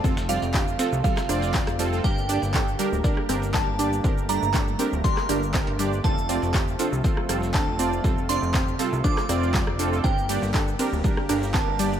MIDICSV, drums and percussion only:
0, 0, Header, 1, 2, 480
1, 0, Start_track
1, 0, Key_signature, -2, "minor"
1, 0, Tempo, 500000
1, 40, Time_signature, 4, 2, 24, 8
1, 11519, End_track
2, 0, Start_track
2, 0, Title_t, "Drums"
2, 40, Note_on_c, 9, 36, 120
2, 40, Note_on_c, 9, 54, 65
2, 45, Note_on_c, 9, 82, 47
2, 136, Note_off_c, 9, 36, 0
2, 136, Note_off_c, 9, 54, 0
2, 141, Note_off_c, 9, 82, 0
2, 165, Note_on_c, 9, 38, 111
2, 165, Note_on_c, 9, 54, 86
2, 171, Note_on_c, 9, 82, 33
2, 261, Note_off_c, 9, 38, 0
2, 261, Note_off_c, 9, 54, 0
2, 267, Note_off_c, 9, 82, 0
2, 278, Note_on_c, 9, 46, 102
2, 286, Note_on_c, 9, 82, 82
2, 374, Note_off_c, 9, 46, 0
2, 382, Note_off_c, 9, 82, 0
2, 405, Note_on_c, 9, 54, 66
2, 411, Note_on_c, 9, 82, 34
2, 501, Note_off_c, 9, 54, 0
2, 507, Note_off_c, 9, 82, 0
2, 519, Note_on_c, 9, 39, 110
2, 520, Note_on_c, 9, 36, 98
2, 520, Note_on_c, 9, 38, 113
2, 520, Note_on_c, 9, 54, 90
2, 526, Note_on_c, 9, 82, 44
2, 615, Note_off_c, 9, 39, 0
2, 616, Note_off_c, 9, 36, 0
2, 616, Note_off_c, 9, 38, 0
2, 616, Note_off_c, 9, 54, 0
2, 622, Note_off_c, 9, 82, 0
2, 652, Note_on_c, 9, 82, 32
2, 748, Note_off_c, 9, 82, 0
2, 759, Note_on_c, 9, 46, 100
2, 760, Note_on_c, 9, 38, 110
2, 760, Note_on_c, 9, 54, 81
2, 767, Note_on_c, 9, 82, 80
2, 855, Note_off_c, 9, 46, 0
2, 856, Note_off_c, 9, 38, 0
2, 856, Note_off_c, 9, 54, 0
2, 863, Note_off_c, 9, 82, 0
2, 892, Note_on_c, 9, 82, 38
2, 988, Note_off_c, 9, 82, 0
2, 1000, Note_on_c, 9, 36, 119
2, 1001, Note_on_c, 9, 38, 42
2, 1001, Note_on_c, 9, 54, 59
2, 1007, Note_on_c, 9, 82, 49
2, 1096, Note_off_c, 9, 36, 0
2, 1097, Note_off_c, 9, 38, 0
2, 1097, Note_off_c, 9, 54, 0
2, 1103, Note_off_c, 9, 82, 0
2, 1124, Note_on_c, 9, 37, 75
2, 1124, Note_on_c, 9, 39, 37
2, 1125, Note_on_c, 9, 38, 112
2, 1125, Note_on_c, 9, 54, 83
2, 1132, Note_on_c, 9, 82, 31
2, 1220, Note_off_c, 9, 37, 0
2, 1220, Note_off_c, 9, 39, 0
2, 1221, Note_off_c, 9, 38, 0
2, 1221, Note_off_c, 9, 54, 0
2, 1228, Note_off_c, 9, 82, 0
2, 1239, Note_on_c, 9, 37, 60
2, 1239, Note_on_c, 9, 46, 104
2, 1247, Note_on_c, 9, 82, 86
2, 1335, Note_off_c, 9, 37, 0
2, 1335, Note_off_c, 9, 46, 0
2, 1343, Note_off_c, 9, 82, 0
2, 1365, Note_on_c, 9, 38, 42
2, 1365, Note_on_c, 9, 54, 61
2, 1373, Note_on_c, 9, 82, 34
2, 1461, Note_off_c, 9, 38, 0
2, 1461, Note_off_c, 9, 54, 0
2, 1469, Note_off_c, 9, 82, 0
2, 1480, Note_on_c, 9, 36, 107
2, 1480, Note_on_c, 9, 38, 124
2, 1480, Note_on_c, 9, 39, 118
2, 1480, Note_on_c, 9, 54, 91
2, 1487, Note_on_c, 9, 82, 47
2, 1576, Note_off_c, 9, 36, 0
2, 1576, Note_off_c, 9, 38, 0
2, 1576, Note_off_c, 9, 39, 0
2, 1576, Note_off_c, 9, 54, 0
2, 1583, Note_off_c, 9, 82, 0
2, 1605, Note_on_c, 9, 37, 84
2, 1605, Note_on_c, 9, 42, 45
2, 1613, Note_on_c, 9, 82, 34
2, 1701, Note_off_c, 9, 37, 0
2, 1701, Note_off_c, 9, 42, 0
2, 1709, Note_off_c, 9, 82, 0
2, 1720, Note_on_c, 9, 38, 41
2, 1720, Note_on_c, 9, 46, 100
2, 1720, Note_on_c, 9, 54, 71
2, 1727, Note_on_c, 9, 82, 83
2, 1816, Note_off_c, 9, 38, 0
2, 1816, Note_off_c, 9, 46, 0
2, 1816, Note_off_c, 9, 54, 0
2, 1823, Note_off_c, 9, 82, 0
2, 1852, Note_on_c, 9, 82, 35
2, 1948, Note_off_c, 9, 82, 0
2, 1959, Note_on_c, 9, 54, 96
2, 1960, Note_on_c, 9, 36, 116
2, 1966, Note_on_c, 9, 82, 48
2, 2055, Note_off_c, 9, 54, 0
2, 2056, Note_off_c, 9, 36, 0
2, 2062, Note_off_c, 9, 82, 0
2, 2092, Note_on_c, 9, 82, 33
2, 2188, Note_off_c, 9, 82, 0
2, 2199, Note_on_c, 9, 46, 106
2, 2200, Note_on_c, 9, 54, 65
2, 2207, Note_on_c, 9, 82, 81
2, 2295, Note_off_c, 9, 46, 0
2, 2296, Note_off_c, 9, 54, 0
2, 2303, Note_off_c, 9, 82, 0
2, 2325, Note_on_c, 9, 38, 44
2, 2332, Note_on_c, 9, 82, 34
2, 2421, Note_off_c, 9, 38, 0
2, 2428, Note_off_c, 9, 82, 0
2, 2440, Note_on_c, 9, 36, 100
2, 2440, Note_on_c, 9, 38, 110
2, 2440, Note_on_c, 9, 39, 118
2, 2440, Note_on_c, 9, 54, 86
2, 2447, Note_on_c, 9, 82, 45
2, 2536, Note_off_c, 9, 36, 0
2, 2536, Note_off_c, 9, 38, 0
2, 2536, Note_off_c, 9, 39, 0
2, 2536, Note_off_c, 9, 54, 0
2, 2543, Note_off_c, 9, 82, 0
2, 2572, Note_on_c, 9, 82, 34
2, 2668, Note_off_c, 9, 82, 0
2, 2679, Note_on_c, 9, 46, 106
2, 2680, Note_on_c, 9, 38, 49
2, 2680, Note_on_c, 9, 54, 69
2, 2686, Note_on_c, 9, 82, 82
2, 2775, Note_off_c, 9, 46, 0
2, 2776, Note_off_c, 9, 38, 0
2, 2776, Note_off_c, 9, 54, 0
2, 2782, Note_off_c, 9, 82, 0
2, 2812, Note_on_c, 9, 82, 37
2, 2908, Note_off_c, 9, 82, 0
2, 2919, Note_on_c, 9, 54, 91
2, 2920, Note_on_c, 9, 36, 120
2, 2927, Note_on_c, 9, 82, 49
2, 3015, Note_off_c, 9, 54, 0
2, 3016, Note_off_c, 9, 36, 0
2, 3023, Note_off_c, 9, 82, 0
2, 3044, Note_on_c, 9, 37, 76
2, 3140, Note_off_c, 9, 37, 0
2, 3159, Note_on_c, 9, 37, 62
2, 3159, Note_on_c, 9, 46, 107
2, 3159, Note_on_c, 9, 54, 71
2, 3166, Note_on_c, 9, 82, 86
2, 3255, Note_off_c, 9, 37, 0
2, 3255, Note_off_c, 9, 46, 0
2, 3255, Note_off_c, 9, 54, 0
2, 3262, Note_off_c, 9, 82, 0
2, 3284, Note_on_c, 9, 38, 43
2, 3292, Note_on_c, 9, 82, 33
2, 3380, Note_off_c, 9, 38, 0
2, 3388, Note_off_c, 9, 82, 0
2, 3399, Note_on_c, 9, 38, 121
2, 3399, Note_on_c, 9, 54, 91
2, 3400, Note_on_c, 9, 36, 108
2, 3400, Note_on_c, 9, 39, 117
2, 3407, Note_on_c, 9, 82, 47
2, 3495, Note_off_c, 9, 38, 0
2, 3495, Note_off_c, 9, 54, 0
2, 3496, Note_off_c, 9, 36, 0
2, 3496, Note_off_c, 9, 39, 0
2, 3503, Note_off_c, 9, 82, 0
2, 3639, Note_on_c, 9, 46, 106
2, 3639, Note_on_c, 9, 54, 71
2, 3646, Note_on_c, 9, 82, 84
2, 3735, Note_off_c, 9, 46, 0
2, 3735, Note_off_c, 9, 54, 0
2, 3742, Note_off_c, 9, 82, 0
2, 3772, Note_on_c, 9, 82, 36
2, 3868, Note_off_c, 9, 82, 0
2, 3879, Note_on_c, 9, 54, 90
2, 3880, Note_on_c, 9, 36, 125
2, 3886, Note_on_c, 9, 82, 48
2, 3975, Note_off_c, 9, 54, 0
2, 3976, Note_off_c, 9, 36, 0
2, 3982, Note_off_c, 9, 82, 0
2, 4011, Note_on_c, 9, 82, 31
2, 4107, Note_off_c, 9, 82, 0
2, 4119, Note_on_c, 9, 46, 113
2, 4119, Note_on_c, 9, 54, 72
2, 4126, Note_on_c, 9, 82, 83
2, 4215, Note_off_c, 9, 46, 0
2, 4215, Note_off_c, 9, 54, 0
2, 4222, Note_off_c, 9, 82, 0
2, 4251, Note_on_c, 9, 82, 35
2, 4347, Note_off_c, 9, 82, 0
2, 4358, Note_on_c, 9, 38, 113
2, 4358, Note_on_c, 9, 54, 86
2, 4359, Note_on_c, 9, 39, 117
2, 4360, Note_on_c, 9, 36, 109
2, 4366, Note_on_c, 9, 82, 44
2, 4454, Note_off_c, 9, 38, 0
2, 4454, Note_off_c, 9, 54, 0
2, 4455, Note_off_c, 9, 39, 0
2, 4456, Note_off_c, 9, 36, 0
2, 4462, Note_off_c, 9, 82, 0
2, 4491, Note_on_c, 9, 82, 32
2, 4587, Note_off_c, 9, 82, 0
2, 4599, Note_on_c, 9, 46, 113
2, 4599, Note_on_c, 9, 54, 70
2, 4606, Note_on_c, 9, 82, 79
2, 4695, Note_off_c, 9, 46, 0
2, 4695, Note_off_c, 9, 54, 0
2, 4702, Note_off_c, 9, 82, 0
2, 4732, Note_on_c, 9, 82, 36
2, 4828, Note_off_c, 9, 82, 0
2, 4839, Note_on_c, 9, 54, 89
2, 4840, Note_on_c, 9, 36, 121
2, 4848, Note_on_c, 9, 82, 46
2, 4935, Note_off_c, 9, 54, 0
2, 4936, Note_off_c, 9, 36, 0
2, 4944, Note_off_c, 9, 82, 0
2, 4964, Note_on_c, 9, 38, 61
2, 4965, Note_on_c, 9, 37, 73
2, 4965, Note_on_c, 9, 39, 38
2, 5060, Note_off_c, 9, 38, 0
2, 5061, Note_off_c, 9, 37, 0
2, 5061, Note_off_c, 9, 39, 0
2, 5079, Note_on_c, 9, 54, 70
2, 5080, Note_on_c, 9, 37, 61
2, 5080, Note_on_c, 9, 46, 112
2, 5087, Note_on_c, 9, 82, 78
2, 5175, Note_off_c, 9, 54, 0
2, 5176, Note_off_c, 9, 37, 0
2, 5176, Note_off_c, 9, 46, 0
2, 5183, Note_off_c, 9, 82, 0
2, 5212, Note_on_c, 9, 82, 33
2, 5308, Note_off_c, 9, 82, 0
2, 5319, Note_on_c, 9, 38, 122
2, 5319, Note_on_c, 9, 39, 125
2, 5319, Note_on_c, 9, 54, 92
2, 5320, Note_on_c, 9, 36, 113
2, 5327, Note_on_c, 9, 82, 45
2, 5415, Note_off_c, 9, 38, 0
2, 5415, Note_off_c, 9, 39, 0
2, 5415, Note_off_c, 9, 54, 0
2, 5416, Note_off_c, 9, 36, 0
2, 5423, Note_off_c, 9, 82, 0
2, 5445, Note_on_c, 9, 42, 47
2, 5541, Note_off_c, 9, 42, 0
2, 5560, Note_on_c, 9, 38, 43
2, 5560, Note_on_c, 9, 46, 111
2, 5560, Note_on_c, 9, 54, 69
2, 5567, Note_on_c, 9, 82, 83
2, 5656, Note_off_c, 9, 38, 0
2, 5656, Note_off_c, 9, 46, 0
2, 5656, Note_off_c, 9, 54, 0
2, 5663, Note_off_c, 9, 82, 0
2, 5693, Note_on_c, 9, 82, 35
2, 5789, Note_off_c, 9, 82, 0
2, 5800, Note_on_c, 9, 36, 125
2, 5800, Note_on_c, 9, 54, 92
2, 5807, Note_on_c, 9, 82, 45
2, 5896, Note_off_c, 9, 36, 0
2, 5896, Note_off_c, 9, 54, 0
2, 5903, Note_off_c, 9, 82, 0
2, 5933, Note_on_c, 9, 82, 32
2, 6029, Note_off_c, 9, 82, 0
2, 6040, Note_on_c, 9, 46, 112
2, 6040, Note_on_c, 9, 54, 67
2, 6047, Note_on_c, 9, 82, 77
2, 6136, Note_off_c, 9, 46, 0
2, 6136, Note_off_c, 9, 54, 0
2, 6143, Note_off_c, 9, 82, 0
2, 6166, Note_on_c, 9, 38, 45
2, 6173, Note_on_c, 9, 82, 33
2, 6262, Note_off_c, 9, 38, 0
2, 6269, Note_off_c, 9, 82, 0
2, 6280, Note_on_c, 9, 36, 108
2, 6280, Note_on_c, 9, 38, 115
2, 6280, Note_on_c, 9, 39, 118
2, 6280, Note_on_c, 9, 54, 90
2, 6288, Note_on_c, 9, 82, 42
2, 6376, Note_off_c, 9, 36, 0
2, 6376, Note_off_c, 9, 38, 0
2, 6376, Note_off_c, 9, 39, 0
2, 6376, Note_off_c, 9, 54, 0
2, 6384, Note_off_c, 9, 82, 0
2, 6413, Note_on_c, 9, 82, 31
2, 6509, Note_off_c, 9, 82, 0
2, 6520, Note_on_c, 9, 38, 48
2, 6520, Note_on_c, 9, 46, 106
2, 6520, Note_on_c, 9, 54, 69
2, 6528, Note_on_c, 9, 82, 75
2, 6616, Note_off_c, 9, 38, 0
2, 6616, Note_off_c, 9, 46, 0
2, 6616, Note_off_c, 9, 54, 0
2, 6624, Note_off_c, 9, 82, 0
2, 6653, Note_on_c, 9, 82, 35
2, 6749, Note_off_c, 9, 82, 0
2, 6760, Note_on_c, 9, 36, 127
2, 6761, Note_on_c, 9, 54, 86
2, 6768, Note_on_c, 9, 82, 45
2, 6856, Note_off_c, 9, 36, 0
2, 6857, Note_off_c, 9, 54, 0
2, 6864, Note_off_c, 9, 82, 0
2, 6885, Note_on_c, 9, 37, 80
2, 6981, Note_off_c, 9, 37, 0
2, 7000, Note_on_c, 9, 37, 65
2, 7000, Note_on_c, 9, 46, 115
2, 7001, Note_on_c, 9, 54, 71
2, 7007, Note_on_c, 9, 82, 78
2, 7096, Note_off_c, 9, 37, 0
2, 7096, Note_off_c, 9, 46, 0
2, 7097, Note_off_c, 9, 54, 0
2, 7103, Note_off_c, 9, 82, 0
2, 7125, Note_on_c, 9, 38, 41
2, 7133, Note_on_c, 9, 82, 31
2, 7221, Note_off_c, 9, 38, 0
2, 7229, Note_off_c, 9, 82, 0
2, 7239, Note_on_c, 9, 38, 120
2, 7239, Note_on_c, 9, 54, 89
2, 7240, Note_on_c, 9, 36, 116
2, 7240, Note_on_c, 9, 39, 118
2, 7247, Note_on_c, 9, 82, 44
2, 7335, Note_off_c, 9, 38, 0
2, 7335, Note_off_c, 9, 54, 0
2, 7336, Note_off_c, 9, 36, 0
2, 7336, Note_off_c, 9, 39, 0
2, 7343, Note_off_c, 9, 82, 0
2, 7479, Note_on_c, 9, 46, 113
2, 7479, Note_on_c, 9, 54, 66
2, 7487, Note_on_c, 9, 82, 80
2, 7575, Note_off_c, 9, 46, 0
2, 7575, Note_off_c, 9, 54, 0
2, 7583, Note_off_c, 9, 82, 0
2, 7612, Note_on_c, 9, 82, 33
2, 7708, Note_off_c, 9, 82, 0
2, 7720, Note_on_c, 9, 36, 124
2, 7720, Note_on_c, 9, 54, 91
2, 7727, Note_on_c, 9, 82, 42
2, 7816, Note_off_c, 9, 36, 0
2, 7816, Note_off_c, 9, 54, 0
2, 7823, Note_off_c, 9, 82, 0
2, 7853, Note_on_c, 9, 82, 30
2, 7949, Note_off_c, 9, 82, 0
2, 7959, Note_on_c, 9, 54, 68
2, 7960, Note_on_c, 9, 46, 112
2, 7968, Note_on_c, 9, 82, 77
2, 8055, Note_off_c, 9, 54, 0
2, 8056, Note_off_c, 9, 46, 0
2, 8064, Note_off_c, 9, 82, 0
2, 8093, Note_on_c, 9, 82, 31
2, 8189, Note_off_c, 9, 82, 0
2, 8198, Note_on_c, 9, 38, 115
2, 8198, Note_on_c, 9, 54, 88
2, 8200, Note_on_c, 9, 36, 110
2, 8200, Note_on_c, 9, 39, 115
2, 8207, Note_on_c, 9, 82, 41
2, 8294, Note_off_c, 9, 38, 0
2, 8294, Note_off_c, 9, 54, 0
2, 8296, Note_off_c, 9, 36, 0
2, 8296, Note_off_c, 9, 39, 0
2, 8303, Note_off_c, 9, 82, 0
2, 8332, Note_on_c, 9, 82, 31
2, 8428, Note_off_c, 9, 82, 0
2, 8440, Note_on_c, 9, 54, 70
2, 8441, Note_on_c, 9, 46, 113
2, 8448, Note_on_c, 9, 82, 73
2, 8536, Note_off_c, 9, 54, 0
2, 8537, Note_off_c, 9, 46, 0
2, 8544, Note_off_c, 9, 82, 0
2, 8573, Note_on_c, 9, 82, 35
2, 8669, Note_off_c, 9, 82, 0
2, 8680, Note_on_c, 9, 36, 124
2, 8680, Note_on_c, 9, 54, 90
2, 8688, Note_on_c, 9, 82, 45
2, 8776, Note_off_c, 9, 36, 0
2, 8776, Note_off_c, 9, 54, 0
2, 8784, Note_off_c, 9, 82, 0
2, 8805, Note_on_c, 9, 38, 62
2, 8806, Note_on_c, 9, 37, 83
2, 8806, Note_on_c, 9, 39, 36
2, 8814, Note_on_c, 9, 82, 29
2, 8901, Note_off_c, 9, 38, 0
2, 8902, Note_off_c, 9, 37, 0
2, 8902, Note_off_c, 9, 39, 0
2, 8910, Note_off_c, 9, 82, 0
2, 8920, Note_on_c, 9, 37, 65
2, 8920, Note_on_c, 9, 46, 107
2, 8920, Note_on_c, 9, 54, 72
2, 8928, Note_on_c, 9, 82, 80
2, 9016, Note_off_c, 9, 37, 0
2, 9016, Note_off_c, 9, 46, 0
2, 9016, Note_off_c, 9, 54, 0
2, 9024, Note_off_c, 9, 82, 0
2, 9053, Note_on_c, 9, 82, 32
2, 9149, Note_off_c, 9, 82, 0
2, 9160, Note_on_c, 9, 36, 114
2, 9160, Note_on_c, 9, 38, 110
2, 9160, Note_on_c, 9, 39, 116
2, 9160, Note_on_c, 9, 54, 83
2, 9168, Note_on_c, 9, 82, 42
2, 9256, Note_off_c, 9, 36, 0
2, 9256, Note_off_c, 9, 38, 0
2, 9256, Note_off_c, 9, 39, 0
2, 9256, Note_off_c, 9, 54, 0
2, 9264, Note_off_c, 9, 82, 0
2, 9285, Note_on_c, 9, 37, 89
2, 9381, Note_off_c, 9, 37, 0
2, 9400, Note_on_c, 9, 38, 44
2, 9400, Note_on_c, 9, 46, 113
2, 9400, Note_on_c, 9, 54, 59
2, 9408, Note_on_c, 9, 82, 74
2, 9496, Note_off_c, 9, 38, 0
2, 9496, Note_off_c, 9, 46, 0
2, 9496, Note_off_c, 9, 54, 0
2, 9504, Note_off_c, 9, 82, 0
2, 9533, Note_on_c, 9, 82, 32
2, 9629, Note_off_c, 9, 82, 0
2, 9639, Note_on_c, 9, 54, 93
2, 9640, Note_on_c, 9, 36, 124
2, 9648, Note_on_c, 9, 82, 44
2, 9735, Note_off_c, 9, 54, 0
2, 9736, Note_off_c, 9, 36, 0
2, 9744, Note_off_c, 9, 82, 0
2, 9774, Note_on_c, 9, 82, 31
2, 9870, Note_off_c, 9, 82, 0
2, 9879, Note_on_c, 9, 54, 68
2, 9880, Note_on_c, 9, 46, 109
2, 9880, Note_on_c, 9, 51, 80
2, 9888, Note_on_c, 9, 82, 76
2, 9975, Note_off_c, 9, 54, 0
2, 9976, Note_off_c, 9, 46, 0
2, 9976, Note_off_c, 9, 51, 0
2, 9984, Note_off_c, 9, 82, 0
2, 10004, Note_on_c, 9, 38, 46
2, 10012, Note_on_c, 9, 82, 33
2, 10100, Note_off_c, 9, 38, 0
2, 10108, Note_off_c, 9, 82, 0
2, 10119, Note_on_c, 9, 38, 109
2, 10119, Note_on_c, 9, 54, 88
2, 10120, Note_on_c, 9, 36, 102
2, 10120, Note_on_c, 9, 39, 109
2, 10128, Note_on_c, 9, 82, 42
2, 10215, Note_off_c, 9, 38, 0
2, 10215, Note_off_c, 9, 54, 0
2, 10216, Note_off_c, 9, 36, 0
2, 10216, Note_off_c, 9, 39, 0
2, 10224, Note_off_c, 9, 82, 0
2, 10253, Note_on_c, 9, 82, 30
2, 10349, Note_off_c, 9, 82, 0
2, 10360, Note_on_c, 9, 38, 49
2, 10360, Note_on_c, 9, 54, 68
2, 10361, Note_on_c, 9, 46, 101
2, 10361, Note_on_c, 9, 51, 81
2, 10368, Note_on_c, 9, 82, 72
2, 10456, Note_off_c, 9, 38, 0
2, 10456, Note_off_c, 9, 54, 0
2, 10457, Note_off_c, 9, 46, 0
2, 10457, Note_off_c, 9, 51, 0
2, 10464, Note_off_c, 9, 82, 0
2, 10493, Note_on_c, 9, 82, 34
2, 10589, Note_off_c, 9, 82, 0
2, 10599, Note_on_c, 9, 54, 92
2, 10600, Note_on_c, 9, 36, 119
2, 10608, Note_on_c, 9, 82, 43
2, 10695, Note_off_c, 9, 54, 0
2, 10696, Note_off_c, 9, 36, 0
2, 10704, Note_off_c, 9, 82, 0
2, 10726, Note_on_c, 9, 37, 83
2, 10822, Note_off_c, 9, 37, 0
2, 10839, Note_on_c, 9, 54, 71
2, 10841, Note_on_c, 9, 37, 69
2, 10841, Note_on_c, 9, 46, 109
2, 10841, Note_on_c, 9, 51, 84
2, 10848, Note_on_c, 9, 82, 78
2, 10935, Note_off_c, 9, 54, 0
2, 10937, Note_off_c, 9, 37, 0
2, 10937, Note_off_c, 9, 46, 0
2, 10937, Note_off_c, 9, 51, 0
2, 10944, Note_off_c, 9, 82, 0
2, 10964, Note_on_c, 9, 38, 42
2, 10973, Note_on_c, 9, 82, 32
2, 11060, Note_off_c, 9, 38, 0
2, 11069, Note_off_c, 9, 82, 0
2, 11079, Note_on_c, 9, 38, 125
2, 11079, Note_on_c, 9, 54, 94
2, 11080, Note_on_c, 9, 36, 112
2, 11080, Note_on_c, 9, 39, 110
2, 11088, Note_on_c, 9, 82, 43
2, 11175, Note_off_c, 9, 38, 0
2, 11175, Note_off_c, 9, 54, 0
2, 11176, Note_off_c, 9, 36, 0
2, 11176, Note_off_c, 9, 39, 0
2, 11184, Note_off_c, 9, 82, 0
2, 11320, Note_on_c, 9, 46, 106
2, 11320, Note_on_c, 9, 51, 81
2, 11320, Note_on_c, 9, 54, 68
2, 11328, Note_on_c, 9, 82, 78
2, 11416, Note_off_c, 9, 46, 0
2, 11416, Note_off_c, 9, 51, 0
2, 11416, Note_off_c, 9, 54, 0
2, 11424, Note_off_c, 9, 82, 0
2, 11454, Note_on_c, 9, 82, 32
2, 11519, Note_off_c, 9, 82, 0
2, 11519, End_track
0, 0, End_of_file